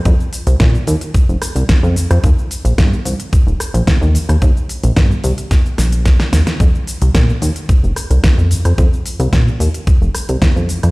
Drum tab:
HH |x-oxx-oxx-oxx-ox|x-oxx-oxx-oxx-ox|x-oxx-oxx-oxx-ox|x-oxx-oxx-oxx-ox|
SH |xxxxxxxxxxxxxxxx|xxxxxxxxxxxxxxxx|xxxxxxxxxxxxxxxx|xxxxxxxxxxxxxxxx|
SD |----o-----r-o--r|----o-----r-o--r|----o---o-o-oooo|----o-----r-o--r|
BD |o---o---o---o---|o---o---o---o---|o---o---o---o---|o---o---o---o---|

HH |x-oxx-oxx-oxx-ox|
SH |xxxxxxxxxxxxxxxx|
SD |----o-----r-o--r|
BD |o---o---o---o---|